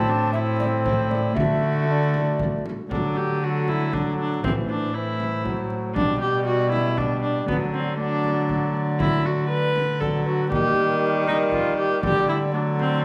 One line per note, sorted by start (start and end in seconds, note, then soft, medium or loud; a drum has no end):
0.00 1.38 A2 medium
0.00 1.30 A3 medium
0.00 0.33 C4 medium
0.00 1.37 C4 medium
0.00 0.11 E4 loud
0.00 1.38 E4 medium
0.00 0.32 A5 loud
0.09 0.37 D4 medium
0.33 1.34 C4 medium
0.33 0.85 E4 medium
0.33 0.39 E5 loud
0.60 0.66 D5 loud
0.60 frame drum soft
0.84 1.39 E4 medium
0.84 1.12 C5 medium
0.84 frame drum medium
1.10 1.35 D5 loud
1.10 frame drum medium
1.32 1.83 A3 medium
1.32 1.84 D4 medium
1.32 1.85 F#4 medium
1.32 1.87 E5 loud
1.36 2.90 D3 medium
1.36 2.71 D3 medium
1.36 2.63 A3 medium
1.36 2.71 F#4 medium
1.36 frame drum medium
1.84 2.86 A3 soft
1.84 2.88 D4 medium
1.84 2.89 F#4 medium
1.84 1.92 E5 medium
1.91 2.65 D5 medium
2.14 frame drum soft
2.39 frame drum medium
2.66 frame drum soft
2.88 4.40 D3 medium
2.88 4.46 D3 soft
2.88 3.38 F#3 medium
2.88 5.96 A3 soft
2.88 4.45 D4 soft
2.88 3.18 D4 medium
2.88 4.45 F#4 soft
2.88 3.38 A4 medium
2.88 frame drum medium
3.17 3.45 G4 medium
3.42 3.92 F#3 medium
3.42 3.70 F#4 medium
3.42 3.92 A4 medium
3.68 3.95 E4 medium
3.68 frame drum soft
3.93 4.45 F#3 medium
3.93 4.19 D4 medium
3.93 4.46 A4 medium
3.93 frame drum medium
4.20 4.43 D4 medium
4.41 5.97 A2 medium
4.41 5.99 A2 soft
4.41 4.94 E3 medium
4.41 4.90 C4 soft
4.41 4.52 C4 medium
4.41 4.92 E4 soft
4.41 frame drum medium
4.45 4.94 C5 medium
4.69 4.95 D4 medium
4.91 5.46 E3 medium
4.91 5.97 C4 soft
4.91 5.97 E4 soft
4.91 5.70 E4 medium
4.91 5.94 C5 medium
5.20 frame drum soft
5.45 5.97 F#3 medium
5.45 frame drum medium
5.93 7.47 B2 medium
5.93 7.51 B2 soft
5.93 6.97 G3 medium
5.93 7.49 B3 soft
5.93 7.45 D4 soft
5.93 6.19 D4 medium
5.93 7.50 G4 soft
5.93 6.96 D5 medium
5.93 frame drum medium
6.21 6.45 G4 medium
6.46 6.71 F#4 medium
6.72 6.99 E4 medium
6.72 frame drum soft
6.96 7.50 G3 medium
6.96 7.22 D4 medium
6.96 7.47 D5 medium
6.96 frame drum medium
7.22 7.47 D4 medium
7.45 10.53 D3 medium
7.45 7.95 A3 soft
7.45 7.56 B3 medium
7.45 7.96 D4 soft
7.45 7.97 F#4 soft
7.45 7.97 D5 medium
7.45 frame drum medium
7.49 7.97 F#3 medium
7.73 7.98 C4 medium
7.96 9.69 F#3 medium
7.96 10.52 A3 soft
7.96 10.52 D4 soft
7.96 8.73 D4 medium
7.96 10.53 F#4 soft
7.96 9.69 D5 medium
8.24 frame drum soft
8.49 frame drum soft
8.99 9.27 E4 loud
8.99 frame drum medium
9.26 9.49 F#4 medium
9.49 10.02 B4 loud
9.76 frame drum soft
10.00 10.52 F#3 medium
10.00 10.25 A4 medium
10.00 10.28 D5 medium
10.00 frame drum medium
10.26 10.50 F#4 medium
10.26 10.53 B4 medium
10.49 12.05 D#3 medium
10.49 12.06 D#3 medium
10.49 12.03 G3 medium
10.49 12.04 A#3 soft
10.49 12.55 G4 medium
10.49 11.26 G4 loud
10.49 12.02 A#4 medium
10.49 frame drum medium
11.27 11.36 D#4 loud
11.27 frame drum soft
11.52 11.77 F4 medium
11.52 frame drum medium
11.78 12.03 G4 medium
12.01 13.05 D3 medium
12.01 13.05 D3 soft
12.01 12.55 G3 medium
12.01 12.51 A3 soft
12.01 12.52 D4 soft
12.01 12.28 G4 loud
12.01 12.53 D5 medium
12.01 frame drum medium
12.29 12.37 E4 medium
12.52 13.05 F#3 medium
12.52 13.05 A3 soft
12.52 13.05 D4 soft
12.52 12.62 D4 medium
12.52 13.05 D5 medium
12.79 13.04 C4 medium
12.79 frame drum soft